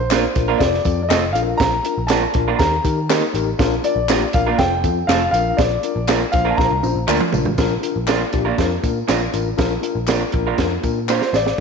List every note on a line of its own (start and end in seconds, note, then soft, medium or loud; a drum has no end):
0.00 0.25 A#1 loud
0.00 0.62 C5 medium
0.10 0.22 A#3 medium
0.10 0.24 D4 medium
0.10 0.23 D4 medium
0.10 0.25 F4 medium
0.10 0.23 F4 loud
0.10 0.25 A#4 medium
0.10 0.23 A#4 medium
0.10 snare loud
0.10 clap loud
0.10 closed hi-hat loud
0.10 tambourine loud
0.35 0.54 A#1 loud
0.35 0.49 D4 medium
0.35 0.49 F4 medium
0.35 0.50 A#4 medium
0.35 kick loud
0.35 closed hi-hat medium
0.35 tambourine soft
0.48 0.58 A#3 soft
0.48 0.58 D4 medium
0.48 0.58 F4 medium
0.48 0.57 A#4 medium
0.58 0.78 F1 loud
0.58 0.74 C4 medium
0.58 0.74 F4 medium
0.58 0.74 A4 medium
0.58 1.01 D5 loud
0.58 kick medium
0.58 snare loud
0.58 closed hi-hat medium
0.58 tambourine soft
0.74 snare soft
0.85 1.12 F2 medium
0.85 0.99 C4 medium
0.85 0.99 F4 medium
0.85 0.99 A4 medium
0.85 kick medium
0.85 closed hi-hat medium
0.85 tambourine medium
1.03 1.09 D5 medium
1.09 1.35 F1 loud
1.09 1.22 A3 medium
1.09 1.24 C4 medium
1.09 1.23 C4 loud
1.09 1.24 F4 medium
1.09 1.23 F4 loud
1.09 1.24 A4 loud
1.09 1.23 A4 loud
1.09 1.14 D#5 loud
1.09 snare loud
1.09 clap loud
1.09 closed hi-hat medium
1.09 tambourine loud
1.33 1.53 A#1 loud
1.33 1.75 D4 medium
1.33 1.75 F4 medium
1.33 1.41 A4 medium
1.33 1.39 F5 medium
1.33 closed hi-hat medium
1.33 tambourine medium
1.42 1.78 A#4 medium
1.58 1.78 A#1 loud
1.58 2.10 A#5 loud
1.58 kick loud
1.58 snare loud
1.58 closed hi-hat medium
1.58 tambourine medium
1.85 1.99 D4 medium
1.85 1.99 F4 medium
1.85 1.99 A#4 medium
1.85 closed hi-hat medium
1.85 tambourine soft
1.98 2.24 A#1 loud
2.07 2.22 A#3 medium
2.07 2.24 D4 medium
2.07 2.22 D4 loud
2.07 2.24 F4 medium
2.07 2.60 A5 medium
2.07 snare loud
2.07 clap medium
2.07 closed hi-hat loud
2.07 tambourine medium
2.11 2.23 F4 medium
2.11 2.24 A#4 medium
2.11 2.23 A#4 loud
2.34 2.53 A#1 loud
2.34 2.49 D4 medium
2.34 2.49 F4 medium
2.34 2.49 A#4 medium
2.34 kick loud
2.34 closed hi-hat medium
2.48 2.58 A#3 medium
2.48 2.58 D4 medium
2.48 2.57 F4 medium
2.48 2.57 A#4 medium
2.59 2.78 D#2 loud
2.59 2.74 D#4 medium
2.59 2.74 G4 medium
2.59 2.74 A#4 medium
2.59 3.30 A#5 loud
2.59 kick loud
2.59 snare loud
2.59 closed hi-hat medium
2.59 tambourine soft
2.84 3.20 D#3 loud
2.84 2.99 D#4 medium
2.84 2.99 G4 medium
2.84 2.99 A#4 medium
2.84 kick medium
2.84 closed hi-hat medium
2.84 tambourine medium
3.10 3.22 A#3 medium
3.10 3.24 D#4 medium
3.10 3.22 D#4 loud
3.10 3.24 G4 medium
3.10 3.22 G4 loud
3.10 3.24 A#4 loud
3.10 3.22 A#4 medium
3.10 snare loud
3.10 clap medium
3.10 closed hi-hat medium
3.10 tambourine medium
3.34 3.52 A1 medium
3.34 3.48 D#4 medium
3.34 3.49 G4 medium
3.34 3.49 A#4 medium
3.34 closed hi-hat medium
3.34 tambourine medium
3.59 3.78 A#1 loud
3.59 3.73 D4 loud
3.59 3.73 F4 loud
3.59 3.73 A#4 loud
3.59 kick loud
3.59 snare loud
3.59 closed hi-hat medium
3.59 tambourine medium
3.84 3.98 D4 medium
3.84 3.98 F4 medium
3.84 3.99 A#4 medium
3.84 4.36 D5 medium
3.84 closed hi-hat medium
3.84 tambourine soft
3.96 4.23 A#1 loud
4.08 4.21 A#3 medium
4.08 4.24 D4 medium
4.08 4.22 D4 medium
4.08 4.22 F4 loud
4.08 4.24 F4 medium
4.08 4.24 G4 medium
4.08 4.22 A#4 loud
4.08 snare loud
4.08 clap medium
4.08 closed hi-hat medium
4.08 tambourine medium
4.33 4.52 A#1 loud
4.33 4.49 D4 medium
4.33 4.49 F4 medium
4.33 4.49 A#4 medium
4.33 4.60 F5 medium
4.33 kick loud
4.33 closed hi-hat medium
4.33 tambourine soft
4.47 4.57 A#3 soft
4.47 4.57 D4 medium
4.47 4.56 F4 medium
4.47 4.56 A#4 medium
4.58 4.85 F1 loud
4.58 4.73 C4 medium
4.58 4.74 F4 medium
4.58 4.73 A4 loud
4.58 5.10 G5 loud
4.58 kick medium
4.58 snare loud
4.58 closed hi-hat medium
4.84 5.02 F2 loud
4.84 4.98 C4 medium
4.84 4.98 F4 medium
4.84 4.98 A4 medium
4.84 kick medium
4.84 closed hi-hat medium
4.84 tambourine medium
5.07 5.26 F1 loud
5.07 5.21 A3 medium
5.07 5.23 C4 medium
5.07 5.21 C4 medium
5.07 5.23 F4 medium
5.07 5.21 F4 medium
5.07 5.23 A4 loud
5.07 5.22 A4 medium
5.07 5.30 F5 medium
5.07 snare loud
5.07 clap loud
5.07 closed hi-hat medium
5.07 tambourine medium
5.31 5.51 A#1 loud
5.31 5.74 D4 medium
5.31 5.74 F4 medium
5.31 5.74 A#4 medium
5.31 5.56 F5 medium
5.31 closed hi-hat medium
5.31 tambourine medium
5.57 5.77 A#1 loud
5.57 6.35 D5 medium
5.57 kick loud
5.57 snare loud
5.57 closed hi-hat medium
5.57 tambourine medium
5.83 5.98 D4 medium
5.83 5.98 F4 medium
5.83 5.98 A#4 medium
5.83 closed hi-hat medium
5.83 tambourine soft
5.96 6.23 A#1 medium
6.08 6.20 A#3 medium
6.08 6.20 D4 medium
6.08 6.23 D4 medium
6.08 6.21 F4 medium
6.08 6.23 F4 medium
6.08 6.21 A#4 medium
6.08 6.23 A#4 medium
6.08 snare loud
6.08 clap medium
6.08 closed hi-hat loud
6.08 tambourine medium
6.32 6.52 A#1 loud
6.32 6.48 D4 medium
6.32 6.48 F4 medium
6.32 6.48 C5 medium
6.32 6.51 F5 medium
6.32 kick loud
6.32 closed hi-hat medium
6.32 tambourine soft
6.45 6.56 A#3 medium
6.45 6.55 D4 medium
6.45 6.55 F4 medium
6.45 6.55 A#4 medium
6.50 6.58 A5 medium
6.57 6.67 A#1 loud
6.57 6.72 D4 medium
6.57 6.73 F4 medium
6.57 6.73 A#4 loud
6.57 7.29 A#5 loud
6.57 kick medium
6.57 snare medium
6.71 6.80 C2 loud
6.83 6.93 A#1 medium
6.83 6.97 D4 medium
6.83 6.98 F4 medium
6.83 6.98 C5 medium
6.83 high tom medium
6.83 tambourine medium
6.96 7.05 A#1 medium
7.07 7.17 D2 medium
7.07 7.20 A#3 medium
7.07 7.20 D4 medium
7.07 7.23 D4 medium
7.07 7.20 F4 medium
7.07 7.23 F4 medium
7.07 7.21 A#4 loud
7.07 7.23 A#4 loud
7.07 clap loud
7.07 mid tom medium
7.07 tambourine medium
7.21 mid tom medium
7.33 7.42 A#1 medium
7.33 7.47 D4 medium
7.33 7.47 F4 medium
7.33 7.48 A#4 medium
7.33 floor tom loud
7.33 tambourine medium
7.45 7.55 A1 medium
7.45 floor tom medium
7.58 7.76 A#1 medium
7.58 7.72 D4 loud
7.58 7.73 F4 medium
7.58 7.73 A#4 loud
7.58 kick loud
7.58 snare loud
7.58 closed hi-hat medium
7.58 tambourine medium
7.83 7.97 D4 medium
7.83 7.97 F4 medium
7.83 7.97 A#4 medium
7.83 closed hi-hat medium
7.83 tambourine soft
7.96 8.23 A#1 loud
8.07 8.20 A#3 medium
8.07 8.22 D4 medium
8.07 8.20 D4 loud
8.07 8.22 F4 medium
8.07 8.20 F4 medium
8.07 8.22 A#4 medium
8.07 8.20 A#4 loud
8.07 snare loud
8.07 clap medium
8.07 closed hi-hat loud
8.07 tambourine medium
8.33 8.52 A#1 loud
8.33 8.47 D4 medium
8.33 8.47 F4 medium
8.33 8.47 G4 medium
8.33 kick medium
8.33 closed hi-hat medium
8.33 tambourine soft
8.45 8.56 A#3 medium
8.45 8.55 D4 medium
8.45 8.55 F4 medium
8.45 8.55 A#4 medium
8.58 8.77 F2 medium
8.58 8.72 D4 medium
8.58 8.72 F4 medium
8.58 8.73 A#4 loud
8.58 kick medium
8.58 snare medium
8.58 closed hi-hat medium
8.58 tambourine soft
8.83 9.02 A#2 medium
8.83 8.97 D4 medium
8.83 8.97 F4 medium
8.83 8.98 A#4 medium
8.83 kick medium
8.83 closed hi-hat medium
8.83 tambourine medium
9.08 9.27 A#1 medium
9.08 9.20 A#3 medium
9.08 9.20 D4 medium
9.08 9.22 D4 medium
9.08 9.20 F4 medium
9.08 9.23 F4 medium
9.08 9.23 A#4 medium
9.08 9.21 A#4 loud
9.08 snare medium
9.08 clap medium
9.08 closed hi-hat medium
9.08 tambourine medium
9.33 9.52 A1 medium
9.33 9.47 D4 medium
9.33 9.48 F4 medium
9.33 9.48 A#4 medium
9.33 closed hi-hat medium
9.33 tambourine medium
9.57 9.77 A#1 loud
9.57 9.72 D4 loud
9.57 9.72 F4 loud
9.57 9.72 A#4 loud
9.57 kick loud
9.57 snare loud
9.57 closed hi-hat medium
9.57 tambourine medium
9.82 9.97 D4 medium
9.82 9.97 F4 medium
9.82 9.97 A#4 medium
9.82 closed hi-hat medium
9.82 tambourine soft
9.95 10.23 A#1 medium
10.07 10.20 A#3 medium
10.07 10.22 D4 medium
10.07 10.21 D4 medium
10.07 10.22 F4 medium
10.07 10.21 F4 medium
10.07 10.22 A#4 loud
10.07 10.21 A#4 medium
10.07 snare loud
10.07 clap medium
10.07 closed hi-hat medium
10.07 tambourine medium
10.32 10.52 A#1 medium
10.32 10.47 D4 medium
10.32 10.47 F4 medium
10.32 10.47 A#4 loud
10.32 kick loud
10.32 closed hi-hat medium
10.47 10.57 A#3 medium
10.47 10.56 D4 medium
10.47 10.56 F4 medium
10.47 10.56 A#4 medium
10.58 10.77 F2 medium
10.58 10.72 D4 loud
10.58 10.73 F4 medium
10.58 10.73 A#4 loud
10.58 kick medium
10.58 snare loud
10.58 closed hi-hat medium
10.58 tambourine soft
10.83 11.20 A#2 medium
10.83 10.98 D4 medium
10.83 10.98 F4 medium
10.83 10.98 A#4 medium
10.83 kick medium
10.83 closed hi-hat medium
10.83 tambourine medium
11.09 11.21 A#3 medium
11.09 11.21 D4 medium
11.09 11.33 F4 soft
11.09 11.21 F4 medium
11.09 11.22 A#4 medium
11.09 11.33 C5 medium
11.09 11.32 D5 medium
11.09 snare soft
11.09 clap medium
11.09 tambourine medium
11.22 snare medium
11.33 11.51 A1 medium
11.33 11.57 A4 soft
11.33 11.60 D5 loud
11.33 11.60 F5 medium
11.33 snare medium
11.33 tambourine medium
11.46 snare medium